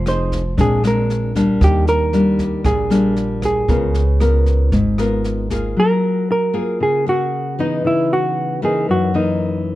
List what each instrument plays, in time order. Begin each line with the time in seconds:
Already playing: upright bass F1, nylon-string guitar F3
0.06 nylon-string guitar C4 D#4 G#4, hollow-body jazz guitar C5, cross-stick, snare
0.32 kick, snare
0.57 upright bass A#1, nylon-string guitar A#2 G#3 C4 D4, hollow-body jazz guitar G#4, kick, snare
0.83 nylon-string guitar G#3 C4 D4, hollow-body jazz guitar A#4, cross-stick, snare
1.10 snare
1.35 nylon-string guitar G3 A#3 D4, kick, snare
1.61 upright bass D#2, nylon-string guitar D#3, hollow-body jazz guitar G4, kick, cross-stick, snare
1.87 hollow-body jazz guitar A#4, snare
2.13 nylon-string guitar G3 A#3 D4, snare
2.39 kick, snare
2.65 upright bass A#1, nylon-string guitar A#2, hollow-body jazz guitar G#4, kick, cross-stick, snare
2.90 nylon-string guitar G3 A#3 D4, snare
3.16 snare
3.42 hollow-body jazz guitar G#4, kick, cross-stick, snare
3.68 upright bass C#2, nylon-string guitar C#3 B3 F4 A#4, kick, snare
3.94 snare
4.20 nylon-string guitar B3 F4 A#4, cross-stick, snare
4.46 kick, snare
4.72 upright bass G#1, nylon-string guitar G#2, kick, snare
4.98 nylon-string guitar B3 F4 A#4, cross-stick, snare
5.24 snare
5.50 nylon-string guitar A#3 F4 G#4, kick, snare
5.77 nylon-string guitar F#3, hollow-body jazz guitar A#4
6.32 hollow-body jazz guitar A#4
6.54 nylon-string guitar A#3 F4 G#4
6.80 nylon-string guitar C#3, hollow-body jazz guitar G#4
7.06 nylon-string guitar A#3 G#4, hollow-body jazz guitar F#4
7.59 nylon-string guitar E3 B3 D#4, hollow-body jazz guitar D#4
7.84 nylon-string guitar C#3, hollow-body jazz guitar E4
8.13 hollow-body jazz guitar F#4
8.62 nylon-string guitar E3 A#3 D#4, hollow-body jazz guitar G#4
8.89 nylon-string guitar F#2, hollow-body jazz guitar F#4
9.14 nylon-string guitar E3 A#3 D#4, hollow-body jazz guitar D#4